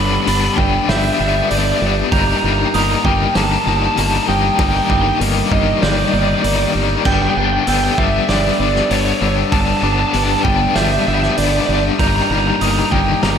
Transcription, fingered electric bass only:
Already playing: G1
0.27 G1
0.58 G1
0.89 G1
1.20 G1
1.51 G1
1.82 G1
2.12 G1
2.44 G1
2.74 G1
3.05 G1
3.36 G1
3.67 G1
3.98 G1
4.29 G1
4.59 G1
4.90 G1
5.21 G1
5.51 G1
5.82 G1
6.13 G1
6.44 G1
6.75 G1
7.06 G1
7.37 G1
7.67 G1
7.98 G1
8.29 G1
8.60 G1
8.91 G1
9.22 G1
9.52 G1
9.83 G1
10.14 G1
10.45 G1
10.76 G1
11.07 G1
11.38 G1
11.69 G1
11.99 G1
12.30 G1
12.61 G1
12.92 G1
13.23 G1

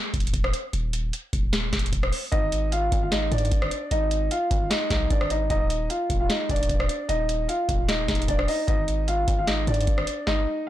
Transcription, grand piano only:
2.32 D#4 D#5
2.72 F4 F5
3.03 F4 F5
3.12 D#4 D#5
3.32 D4 D5
3.91 D#4 D#5
4.31 F4 F5
4.70 D#4 D#5
4.91 D#4 D#5
5.10 D4 D5
5.30 D#4 D#5
5.50 D#4 D#5
5.90 F4 F5
6.20 F4 F5
6.30 D#4 D#5
6.50 D4 D5
7.09 D#4 D#5
7.48 F4 F5
7.88 D#4 D#5
8.09 D#4 D#5
8.28 D4 D5
8.48 D#4 D#5
8.67 D#4 D#5
9.08 F4 F5
9.38 F4 F5
9.47 D#4 D#5
9.67 D4 D5
10.27 D#4 D#5

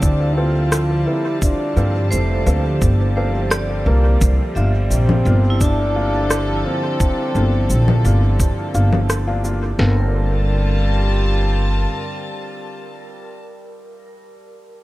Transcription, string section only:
Already playing: D3 F3 G3 C4 A5
4.21 D3
5.09 A4
9.79 D3
9.90 G3
10.00 C4
10.10 F4
10.21 A5

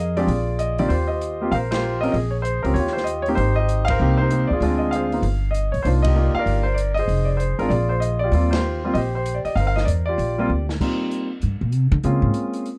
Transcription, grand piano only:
Already playing: G#4 A#4 D#5
0.17 G#3 C4 D4 F4 G4 G#4 D5
0.59 D#5
0.79 D#3 A#3 C4 F4 G4 D5
0.88 F4 G4 C5
1.08 G4 C5 D#5
1.41 A#3 C4 F4 G4
1.52 A#4 C5 F5
1.71 F4 G4 C5
2.01 C4 C#4 F4 A#4 D#5
2.12 G#4 D#5
2.31 C#5
2.42 C5
2.63 C4 C#4 F4 G4 A#4
2.74 C#5
2.78 F4 G4
2.93 C5
3.04 D#5
3.22 C#5
3.28 A#3 C4 D#4 G4
3.35 G4 C5
3.39 D#4
3.56 C5 D#5
3.60 G4
3.85 F5
3.90 A#4 C5
4.00 A#3 C4 D#4 G4
4.17 C5
4.22 D#4 G4
4.30 A#3 C4 D#4 G4
4.47 D5
4.53 F4 G#4
4.62 G#3 C4 D4 F4
4.78 D#5
4.91 F5
4.95 G#4 C5
5.13 A#3 B3 D#4 F4
5.51 D#5
5.72 C#5
5.82 A#3 D4 D#4 F4 C5
6.02 D#5
6.07 G4 A#4
6.15 A#3 D#4 F4 D5
6.35 F5
6.39 A#4 D5
6.63 C5
6.74 D5
6.94 D#5
6.99 G#4 C5
7.25 D5
7.37 C5
7.59 G#3 C4 D4 F4 A#4
7.69 D5
7.73 F4 G#4
7.89 C5
8.00 D#5
8.19 D5
8.24 F4 G4
8.33 G3 A#3 C4 F4
8.51 F4 G4 C5
8.84 G3 A#3 C4 F4
8.94 G4 C5 D#5
9.15 C5
9.34 D5
9.45 D5 D#5
9.55 C5 F5
9.60 A#4
9.67 F5
9.76 D#5
9.85 D5
10.06 F4 G4 D5
10.38 G3 A#3 C4 F4
10.80 G3 A#3 C4 D#4 F4
12.04 G#3 A#3 C4 C#4 F4

